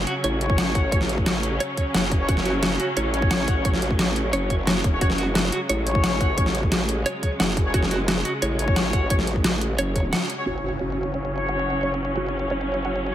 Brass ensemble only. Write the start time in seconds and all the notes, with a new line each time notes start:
0.41 C#4 F#4 C#5
0.92 C#4 F#4 C#5
2.20 C#4 F#4 C#5
2.29 C#4 F#4 C#5
3.14 C#4 F#4 C#5
3.65 C#4 F#4 C#5
4.93 C#4 F#4 C#5
5.01 C#4 F#4 C#5
5.87 C#4 F#4 C#5
6.38 C#4 F#4 C#5
7.65 C#4 F#4 C#5
7.74 C#4 F#4 C#5
8.59 C#4 F#4 C#5
9.10 C#4 F#4 C#5
10.38 C#4 F#4 C#5
10.47 C#4 F#4 C#5
11.32 C#4 F#4 C#5
11.83 C#4 F#4 C#5
13.11 C#4 F#4 C#5